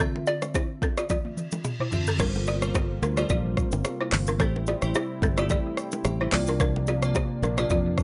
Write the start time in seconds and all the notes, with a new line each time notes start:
Already playing: D5
0.00 D3 C4 F4 A4 E5, kick, cross-stick, low conga
0.16 low bongo
0.27 F4 D5, high bongo, shaker
0.42 cross-stick, low bongo, shaker
0.55 E4 C5, kick, high bongo, shaker
0.82 C4 A4, kick, low bongo, shaker
0.97 F4 D5, cross-stick, high bongo, shaker
1.09 F4 D5, kick, high tom, reverse cymbal, low conga, shaker
1.25 high tom
1.37 mid tom, shaker
1.52 mid tom, low bongo, shaker
1.64 mid tom, high bongo, shaker
1.80 E4 C5, mid tom
1.91 D3 C4 F4 E5, floor tom, low conga, shaker
2.07 C4 A4, floor tom, shaker
2.18 G1 C3 G3 A#3 C4 D4 F4 A4 A#4 C5, kick, cross-stick, crash, low conga, shaker
2.36 low bongo
2.47 F4 D5, high bongo, shaker
2.61 G3 F4 A4 A#4 C5, cross-stick, shaker
2.75 F4 C5, kick, high bongo, shaker
3.02 D2 D4 A#4, low bongo, shaker
3.16 G3 F4 A4 A#4 C5 D5, cross-stick, high bongo, shaker
3.29 A#1 F4 D5, kick, low conga, shaker
3.57 kick, cross-stick, shaker
3.72 G1, low bongo, shaker
3.85 cross-stick, high bongo, shaker
4.01 E4 C5
4.12 G1, cross-stick, clap, open hi-hat, low conga, shaker
4.27 D4 A#4, shaker
4.39 A1 C3 G3 A3 C4 E4 G4 A4 C5, kick, cross-stick, low conga, shaker
4.56 low bongo
4.67 F4 D5, high bongo, shaker
4.81 A1 A3 E4 G4 C5, cross-stick, shaker
4.94 E4 C5, high bongo, shaker
5.22 G1 C4 A4, kick, low bongo, shaker
5.36 A3 E4 F4 G4 A4 D5, cross-stick, high bongo, shaker
5.49 G4 D5, kick, low conga, shaker
5.77 G5, cross-stick, shaker
5.92 low bongo, shaker
6.05 A1 G4 E5, cross-stick, high bongo, shaker
6.20 E4 C5
6.31 C2 C3 F3 A#3 D4 F4 D5, cross-stick, clap, open hi-hat, low conga, shaker
6.47 D4 A#4, shaker
6.60 D4 A#4, kick, cross-stick, low conga, shaker
6.76 low bongo
6.87 F4 D5, high bongo, shaker
7.02 C3 A#3 F4 D5, cross-stick, shaker
7.15 F4 C5, kick, high bongo, shaker
7.42 A#1 D4 A#4, low bongo, shaker
7.56 C3 A#3 F4 D5, cross-stick, high bongo, shaker
7.70 F2 F4 D5, kick, low conga, shaker
7.98 kick, cross-stick, shaker